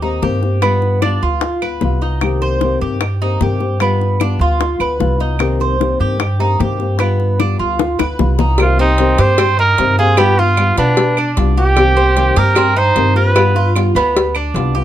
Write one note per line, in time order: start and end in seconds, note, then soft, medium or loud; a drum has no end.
0.00 0.18 D#2 medium
0.00 0.22 A#3 soft
0.00 0.22 C4 soft
0.00 0.22 D#4 medium
0.00 0.21 G4 soft
0.22 1.16 G2 medium
0.22 0.41 C3 medium
0.22 0.42 D#3 medium
0.22 0.42 A#3 medium
0.22 0.42 C4 medium
0.22 0.61 G4 medium
0.22 0.41 G4 medium
0.22 high bongo soft
0.22 low bongo medium
0.42 0.62 A#3 soft
0.42 0.62 C4 soft
0.42 0.61 G4 soft
0.42 high bongo soft
0.62 1.01 G3 medium
0.62 1.01 B3 medium
0.62 1.02 F4 medium
0.62 high bongo medium
0.62 claves medium
0.82 high bongo soft
1.02 1.41 G3 medium
1.02 1.42 B3 medium
1.02 1.21 D4 medium
1.02 1.42 F4 medium
1.02 high bongo medium
1.02 claves medium
1.22 1.78 D2 medium
1.22 1.61 F4 medium
1.41 muted nylon-string guitar stroke medium
1.41 high bongo medium
1.62 1.82 B3 soft
1.62 1.81 F4 soft
1.62 2.00 B4 medium
1.62 claves medium
1.81 2.75 C2 medium
1.81 2.01 G3 medium
1.81 2.02 B3 medium
1.81 2.01 F4 medium
1.81 high bongo soft
1.81 low bongo medium
2.02 2.22 B3 soft
2.02 2.40 D#4 medium
2.02 2.21 F4 soft
2.02 high bongo soft
2.21 2.61 C3 medium
2.21 2.61 D#3 medium
2.21 2.61 A#3 medium
2.21 2.61 C4 medium
2.21 2.61 G4 medium
2.21 high bongo medium
2.21 claves medium
2.42 2.80 C5 medium
2.42 high bongo soft
2.61 3.00 C3 medium
2.61 3.00 D#3 medium
2.61 3.01 A#3 medium
2.61 3.01 C4 medium
2.61 3.00 G4 medium
2.61 high bongo medium
2.81 3.37 G2 medium
2.81 3.20 G4 medium
3.01 muted nylon-string guitar stroke medium
3.01 high bongo medium
3.01 claves medium
3.22 3.41 A#3 soft
3.22 3.41 C4 soft
3.22 3.41 D#4 medium
3.22 3.41 G4 soft
3.41 4.34 G2 loud
3.41 3.60 C3 medium
3.41 3.60 D#3 medium
3.41 3.60 A#3 medium
3.41 3.60 C4 medium
3.41 3.80 G4 medium
3.41 3.59 G4 medium
3.41 high bongo soft
3.41 low bongo medium
3.60 3.80 A#3 soft
3.60 3.80 C4 soft
3.60 3.80 G4 medium
3.60 high bongo soft
3.80 4.19 G3 medium
3.80 4.20 B3 medium
3.80 4.20 F4 medium
3.80 high bongo medium
3.80 claves medium
4.01 high bongo soft
4.20 4.58 G3 medium
4.20 4.59 B3 medium
4.20 4.40 D4 medium
4.20 4.59 F4 medium
4.20 high bongo medium
4.20 claves medium
4.39 4.77 D2 loud
4.39 4.79 F4 medium
4.59 muted nylon-string guitar stroke medium
4.59 high bongo medium
4.78 4.98 D2 medium
4.78 4.99 B3 soft
4.78 4.98 F4 medium
4.78 5.19 B4 medium
4.78 claves medium
4.99 5.94 C2 medium
4.99 5.19 G3 medium
4.99 5.19 B3 medium
4.99 5.17 F4 medium
4.99 high bongo soft
4.99 low bongo medium
5.18 5.39 B3 soft
5.18 5.59 D#4 medium
5.18 5.38 F4 soft
5.18 high bongo soft
5.39 5.78 C3 medium
5.39 5.78 D#3 medium
5.39 5.78 A#3 medium
5.39 5.79 C4 medium
5.39 5.79 G4 medium
5.39 high bongo medium
5.39 claves medium
5.60 5.99 C5 medium
5.60 high bongo soft
5.79 6.18 C3 medium
5.79 6.19 D#3 medium
5.79 6.18 A#3 medium
5.79 6.18 C4 medium
5.79 6.19 G4 medium
5.79 high bongo medium
6.00 6.56 G2 medium
6.00 6.39 G4 medium
6.19 muted nylon-string guitar stroke medium
6.19 high bongo medium
6.19 claves medium
6.39 6.58 A#3 soft
6.39 6.58 C4 soft
6.39 6.59 D#4 medium
6.39 6.59 G4 medium
6.59 7.53 G2 medium
6.59 6.78 C3 medium
6.59 6.78 D#3 medium
6.59 6.79 A#3 medium
6.59 6.79 C4 medium
6.59 6.78 G4 medium
6.59 6.99 G4 medium
6.59 high bongo soft
6.59 low bongo medium
6.80 6.99 A#3 soft
6.80 6.99 C4 soft
6.80 6.99 G4 soft
6.80 high bongo soft
6.99 7.38 G3 medium
6.99 7.38 B3 medium
6.99 7.39 B3 medium
6.99 7.39 F4 medium
6.99 high bongo medium
6.99 claves medium
7.20 high bongo soft
7.39 7.78 G3 medium
7.39 7.79 B3 medium
7.39 7.59 D4 medium
7.39 7.79 F4 medium
7.39 high bongo medium
7.39 claves medium
7.59 7.96 D2 medium
7.59 7.98 F4 medium
7.79 muted nylon-string guitar stroke medium
7.79 high bongo loud
7.98 8.18 D2 medium
7.98 8.19 B3 soft
7.98 8.18 F4 soft
7.98 8.38 B4 medium
7.98 high bongo medium
7.98 claves medium
8.19 9.13 C2 medium
8.19 8.38 G3 medium
8.19 8.39 B3 medium
8.19 8.38 F4 medium
8.19 low bongo medium
8.39 8.59 B3 soft
8.39 8.59 D#4 medium
8.39 8.58 F4 soft
8.39 low bongo medium
8.58 8.78 C3 medium
8.58 8.78 D#3 medium
8.58 8.78 A#3 medium
8.58 8.78 C4 medium
8.58 8.79 F4 medium
8.58 8.77 G4 medium
8.58 cowbell medium
8.58 claves medium
8.78 8.98 A#3 soft
8.78 9.18 C4 medium
8.78 8.98 C4 soft
8.78 9.22 D#4 medium
8.78 8.98 G4 medium
8.98 9.18 C3 medium
8.98 9.18 D#3 medium
8.98 9.18 A#3 medium
8.98 9.18 C4 medium
8.98 9.18 G4 medium
8.98 cowbell medium
9.18 9.74 G2 loud
9.18 9.38 A#3 soft
9.18 9.38 C4 soft
9.18 9.38 G4 medium
9.18 9.59 C5 loud
9.18 cowbell medium
9.38 9.58 C4 medium
9.38 muted nylon-string guitar stroke medium
9.38 cowbell loud
9.38 claves medium
9.59 9.97 D#4 medium
9.59 9.96 A#4 loud
9.78 10.72 G2 medium
9.78 9.97 C3 medium
9.78 9.98 D#3 medium
9.78 9.98 A#3 medium
9.78 9.98 C4 medium
9.78 9.98 G4 medium
9.78 cowbell medium
9.99 10.18 A#3 soft
9.99 10.18 C4 soft
9.99 10.18 F4 medium
9.99 10.18 G4 medium
9.99 10.20 G#4 loud
10.17 10.38 G3 medium
10.17 10.37 B3 loud
10.17 10.38 B3 medium
10.17 10.37 F4 medium
10.17 10.40 G4 loud
10.17 cowbell loud
10.17 claves medium
10.38 10.58 B3 soft
10.38 10.57 F4 medium
10.38 10.78 F4 loud
10.38 10.77 F4 medium
10.57 10.77 G3 medium
10.57 10.77 B3 medium
10.57 10.77 F4 medium
10.57 cowbell medium
10.57 claves medium
10.77 11.33 B2 medium
10.77 11.16 B3 medium
10.77 10.96 B3 soft
10.77 11.34 D4 medium
10.77 10.97 F4 medium
10.77 cowbell medium
10.97 muted nylon-string guitar stroke medium
10.97 cowbell loud
11.17 11.56 D4 medium
11.17 claves medium
11.37 12.30 C2 medium
11.37 11.56 G3 medium
11.37 11.57 B3 medium
11.37 11.56 F4 medium
11.37 cowbell medium
11.57 11.77 B3 soft
11.57 11.76 F4 soft
11.57 11.96 G4 medium
11.57 12.39 G4 loud
11.76 11.96 C3 medium
11.76 11.96 D#3 medium
11.76 11.96 A#3 medium
11.76 11.96 C4 medium
11.76 11.95 G4 loud
11.76 cowbell loud
11.76 claves medium
11.96 12.16 A#3 soft
11.96 12.35 C4 medium
11.96 12.16 C4 soft
11.96 12.16 G4 soft
12.16 12.35 C3 medium
12.16 12.36 D#3 medium
12.16 12.36 A#3 medium
12.16 12.36 C4 medium
12.16 12.35 G4 medium
12.16 cowbell medium
12.36 12.92 G2 medium
12.36 12.55 A#3 soft
12.36 12.56 C4 soft
12.36 12.55 G4 soft
12.36 12.56 G4 medium
12.36 12.79 A#4 loud
12.36 cowbell medium
12.55 12.76 C4 medium
12.55 muted nylon-string guitar stroke medium
12.55 cowbell loud
12.55 claves medium
12.76 13.15 D#4 medium
12.76 13.16 C5 loud
12.95 13.89 G2 medium
12.95 13.15 C3 medium
12.95 13.15 D#3 medium
12.95 13.15 A#3 medium
12.95 13.15 C4 medium
12.95 13.14 G4 medium
12.95 cowbell medium
13.15 13.35 A#3 soft
13.15 13.35 C4 soft
13.15 13.35 F4 medium
13.15 13.35 G4 soft
13.15 13.72 B4 loud
13.35 13.54 G3 medium
13.35 13.55 B3 medium
13.35 13.54 F4 medium
13.35 cowbell medium
13.35 claves medium
13.55 13.75 B3 soft
13.55 13.74 F4 medium
13.55 13.94 F4 medium
13.75 13.94 G3 medium
13.75 13.95 B3 medium
13.75 13.94 F4 medium
13.75 cowbell medium
13.75 claves medium
13.95 14.50 D2 medium
13.95 14.34 B3 medium
13.95 14.15 B3 soft
13.95 14.14 F4 medium
13.95 cowbell medium
14.16 muted nylon-string guitar stroke medium
14.16 cowbell loud
14.35 14.74 D4 medium
14.35 claves medium
14.54 14.84 C2 loud
14.54 14.74 G3 medium
14.54 14.74 B3 medium
14.54 14.74 F4 medium
14.54 cowbell medium
14.75 14.84 B3 soft
14.75 14.84 F4 medium
14.75 14.84 G4 medium